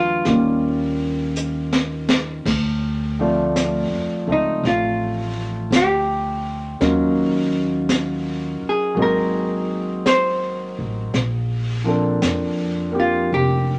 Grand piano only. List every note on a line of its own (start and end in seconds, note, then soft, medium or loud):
0.00 0.25 D3 medium
0.00 0.27 F#3 medium
0.00 0.25 G3 soft
0.00 0.26 A3 soft
0.00 0.27 B3 medium
0.26 2.46 D#3 soft
0.26 2.46 G3 soft
0.26 2.46 A#3 soft
0.26 2.47 C#4 soft
0.26 2.47 F4 soft
3.19 6.81 F3 soft
3.19 4.26 A3 soft
3.19 4.28 C4 soft
3.19 6.80 F4 soft
3.19 6.82 D5 soft
4.27 6.81 A3 soft
4.27 6.82 C4 soft
6.80 8.93 F#3 medium
6.80 8.94 A#3 soft
6.80 8.97 C#4 soft
6.80 8.97 D#4 soft
6.80 8.98 F4 soft
8.95 11.13 F#3 soft
8.95 11.13 A#3 soft
8.95 11.14 C4 soft
8.95 11.14 D#4 soft
9.00 11.16 G#4 medium
11.84 13.79 F3 soft
11.84 12.90 A#3 soft
11.84 12.92 C4 soft
11.84 13.79 D4 soft
11.88 13.79 A4 soft
12.91 13.79 A#3 soft
12.91 13.79 C4 soft
12.91 13.79 G4 soft